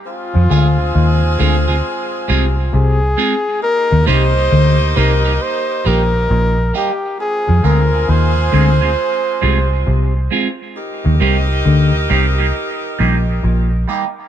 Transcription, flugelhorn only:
X:1
M:4/4
L:1/8
Q:"Swing 16ths" 1/4=67
K:Eb
V:1 name="Flugelhorn"
F3 z3 A2 | B c2 B c B2 G | A B c4- c z | z8 |]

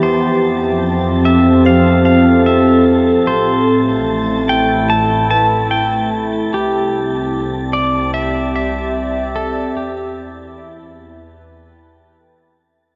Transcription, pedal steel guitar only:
X:1
M:4/4
L:1/8
Q:1/4=74
K:Flyd
V:1 name="Pedal steel guitar"
c3 e f f e z | c3 g a a g z | G3 d e e2 A | G6 z2 |]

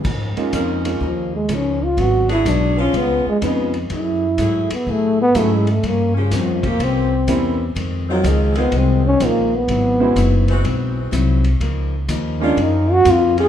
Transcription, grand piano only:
X:1
M:4/4
L:1/8
Q:"Swing" 1/4=125
K:Db
V:1 name="Grand piano"
z [A,B,DEF]2 [A,B,DEF] z4 | z6 [F,A,_CDE] z | z6 [G,A,=A,D_F] z | z6 [=G,B,CD=E] z |
z6 [F,A,CEF] z | z [A,=B,C=EG] z6 | z3 [A,B,DEF] z4 |]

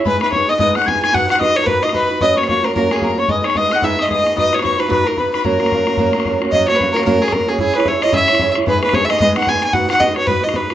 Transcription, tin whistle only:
X:1
M:4/4
L:1/8
Q:"Swing" 1/4=223
K:F#mix
V:1 name="Tin whistle"
b b c' d' d' f' g' g' | f' f' d' c' b d' b2 | d' c' c' a a g a c' | d' c' d' f' e' d' d' z |
d'2 c' b b a b b | a6- a z | z8 | z8 |
z8 | z8 |]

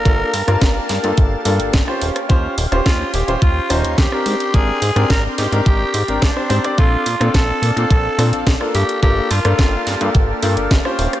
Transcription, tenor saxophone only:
X:1
M:4/4
L:1/16
Q:1/4=107
K:Gm
V:1 name="Tenor saxophone"
B6 z8 z2 | z4 F2 G2 F2 E2 G4 | _A4 B2 G2 G4 D3 z | F4 A4 A4 z2 G2 |
G2 F6 z8 |]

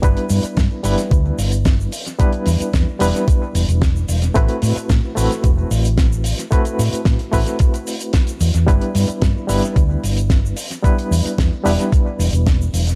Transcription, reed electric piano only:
X:1
M:4/4
L:1/8
Q:1/4=111
K:Ador
V:1 name="Reed electric piano"
[G,B,DEB]3 [G,B,DEB]4 z | [G,B,DEB]3 [G,B,DEB]4- [G,B,DEB] | [A,CEFB]3 [A,CEFB]4- [A,CEFB] | [A,CEFB]3 [A,CEFB]4- [A,CEFB] |
[G,B,DEB]3 [G,B,DEB]4 z | [G,B,DEB]3 [G,B,DEB]4- [G,B,DEB] |]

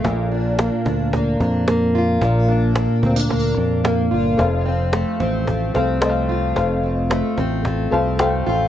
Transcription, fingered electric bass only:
X:1
M:4/4
L:1/16
Q:1/4=110
K:Bb
V:1 name="Fingered electric bass" clef=bass
B,,,4- B,,, z D,,4 F,,6 | B,,,4- B,,, z D,,4 F,,4 G,,,2 | F,,,4- F,,, z A,,,4 C,,6 | F,,,4- F,,, z A,,,4 C,,4 A,,,2 |]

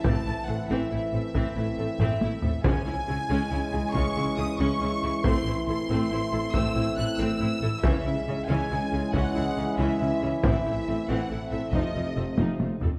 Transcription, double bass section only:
X:1
M:12/8
L:1/8
Q:3/8=92
K:Alyd
V:1 name="Double bass section" clef=bass
A,,, A,,, A,,, A,,, A,,, A,,, A,,, A,,, A,,, A,,, A,,, A,,, | C,, C,, C,, C,, C,, C,, C,, C,, C,, C,, C,, C,, | A,,, A,,, A,,, A,,, A,,, A,,, A,,, A,,, A,,, A,,, A,,, A,,, | C,, C,, C,, C,, C,, C,, C,, C,, C,, C,, C,, C,, |
A,,, A,,, A,,, A,,, A,,, A,,, =F,,, F,,, F,,, F,,, F,,, F,,, |]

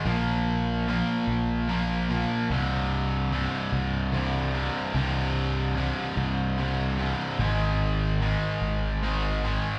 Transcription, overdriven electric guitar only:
X:1
M:6/8
L:1/8
Q:3/8=49
K:Cm
V:1 name="Overdriven electric guitar" clef=bass
[B,,F,B,]2 [B,,F,B,]2 [B,,F,B,] [B,,F,B,] | [C,,G,,C,]2 [C,,G,,C,]2 [C,,G,,C,] [C,,G,,C,] | [C,,G,,C,]2 [C,,G,,C,]2 [C,,G,,C,] [C,,G,,C,] | [A,,E,A,]2 [A,,E,A,]2 [A,,E,A,] [A,,E,A,] |]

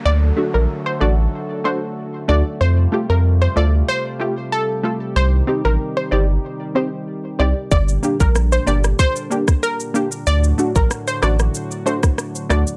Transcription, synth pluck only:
X:1
M:4/4
L:1/16
Q:1/4=94
K:Dphr
V:1 name="Synth pluck"
d z2 B z c d z3 c z3 d z | c z2 B z c d z c3 z A3 z | c z2 B z c d z3 c z3 d z | d z2 B z c d z c3 z B3 z |
d z2 B z c d z3 c z3 d z |]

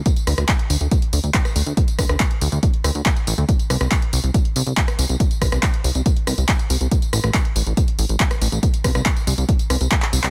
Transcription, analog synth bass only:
X:1
M:4/4
L:1/16
Q:1/4=140
K:C
V:1 name="Analog synth bass" clef=bass
z2 D,, D,, z2 D,, D,, z2 D,, D,, z2 D,, D,, | z2 D,, D,, z2 D,, D,, z2 D,, D,, z2 A,,, D,, | z2 C,, C,, z2 C,, C,, z2 C,, C,, z2 C,, C,, | z2 C,, C,, z2 C,, C,, z2 C,, C,, z2 C,, C,, |
z2 A,,, A,,, z2 A,,, A,,, z2 A,,, A,,, z2 A,,, A,,, | z2 C,, C,, z2 C,, C,, z2 C,, C,, z2 C,, C,, |]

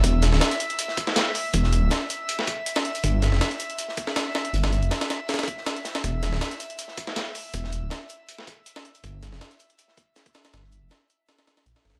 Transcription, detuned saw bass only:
X:1
M:4/4
L:1/16
Q:1/4=160
K:Em
V:1 name="Detuned saw bass" clef=bass
E,,,3 D,,, z12 | E,,,3 D,,, z12 | G,,,3 =F,,, z12 | G,,,3 =F,,, z12 |
E,,,3 D,,, z12 | E,,,3 D,,, z12 | G,,,3 =F,,, z12 | G,,,3 =F,,, z8 _B,,, z G,,, C,, |]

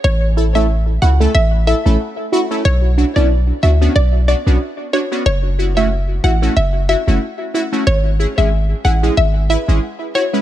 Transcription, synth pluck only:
X:1
M:4/4
L:1/16
Q:"Swing 16ths" 1/4=92
K:A
V:1 name="Synth pluck"
c z2 e2 z f2 e z e z4 z | c z2 d2 z e2 d z d z3 c z | c z2 e2 z f2 e z e z4 z | c z2 e2 z f2 e z e z3 c z |]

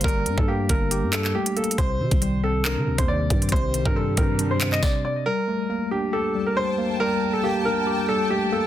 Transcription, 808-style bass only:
X:1
M:4/4
L:1/16
Q:1/4=138
K:Gm
V:1 name="808-style bass" clef=bass
G,,,2 G,, G,,3 G,,,3 G,,3 z4 | C,,2 C, C,,6 E, C,, E,,3 G,,2 | C,,3 G,,3 G,,6 z4 | z16 |
z16 |]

